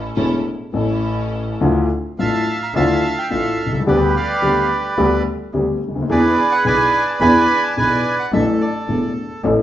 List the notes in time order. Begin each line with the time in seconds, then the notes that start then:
Already playing: A1 A2 E3 A3 C#4 E4 A4
0.16 E1 E2 E3 A3 C#4 E4 A4
0.72 A1 A2 E3 A3 C#4 E4 A4
1.60 D2 D3 E3 A3 D4 F4
2.18 A1 A2 E3 A3 D4 F4 E5 F5 A5
2.63 A#5
2.74 D2 D3 E3 A3 D4 F4 E5 F5 A5
3.18 G5
3.30 A1 A2 E3 A3 D4 F4 A4 F5
3.60 C2
3.66 B1
3.73 C2 E5
3.80 C#2
3.86 D2 D3 G3 B3 G4 B4 D5
4.16 B4 D5 F5
4.42 D2 D3 G3 B3 G4
4.98 D2 D3 G3 B3 G4
5.53 D2 D3 G3 B3 G4
5.81 D2
5.88 C#2
5.96 D2
6.02 D#2
6.09 E2 E3 B3 D4 G#4 B4 D5
6.52 F#5
6.64 B1 B2 E3 B3 D4 G#4 B4 D5 G#5
7.07 A5
7.20 E2 E3 B3 D4 G#4 D5 G#5 B5
7.63 A5
7.76 B1 B2 E3 B3 D4 G#4 B4 D5 G#5
8.19 F#5
8.32 A1 A2 E3 A3 D4 A4 E5
8.61 A4 D5
8.88 E1 E2 E3 A3 D4 A4
9.44 A1 A2 E3 A3 C#4 A4